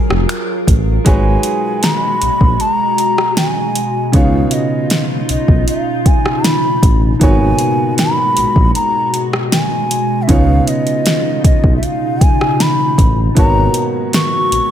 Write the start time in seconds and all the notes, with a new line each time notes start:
Already playing: F#3 C#4 F4 G#4 A#4 F5 G#5
0.10 F1, cross-stick
0.29 finger snap, closed hi-hat
0.67 A1, kick, closed hi-hat
1.04 G#1 B2 G#3 D#4 F#4 G#4 B4 C#5 G#5, kick, closed hi-hat
1.43 closed hi-hat
1.83 A#5, snare, closed hi-hat
1.95 B5
2.22 A#1, closed hi-hat
2.41 A#1, kick
2.60 A5, closed hi-hat
2.73 A#5
2.98 closed hi-hat
3.18 cross-stick
3.37 G#5, snare, closed hi-hat
3.75 closed hi-hat
4.12 C#2 C#3 B3 D#4 F4 C#5 F5, kick, closed hi-hat
4.51 D#5, closed hi-hat
4.90 snare, closed hi-hat
5.29 B1 D#5, closed hi-hat
5.48 B1, kick
5.68 F5, closed hi-hat
6.06 G#5, kick, closed hi-hat
6.26 cross-stick
6.44 B5, snare, closed hi-hat
6.83 A1, kick, closed hi-hat
7.19 G#1 G#2 D#3 G#3 A#3 B3 F#4 C#5 G#5, kick, closed hi-hat
7.59 closed hi-hat
7.98 B5, snare, closed hi-hat
8.37 A#1, closed hi-hat
8.56 A#1, kick
8.75 A#5, closed hi-hat
9.14 closed hi-hat
9.33 cross-stick
9.52 G#5, snare, closed hi-hat
9.91 closed hi-hat
10.22 E5
10.27 C#2 C#3 B3 D#4 F4 C#5 F5, kick, closed hi-hat
10.67 D#5, closed hi-hat
10.87 closed hi-hat
11.06 snare, closed hi-hat
11.44 B1 D#5, kick, closed hi-hat
11.64 B1, kick
11.77 E5
11.83 F5, closed hi-hat
12.21 G#5, kick, closed hi-hat
12.41 cross-stick
12.60 B5, snare, closed hi-hat
12.98 A1, kick, closed hi-hat
13.35 G#1 G#2 D#3 G#3 A#3 B3 F#4 C#5 A#5, kick, closed hi-hat
13.74 closed hi-hat
14.13 C#6, snare, closed hi-hat
14.52 A#1, closed hi-hat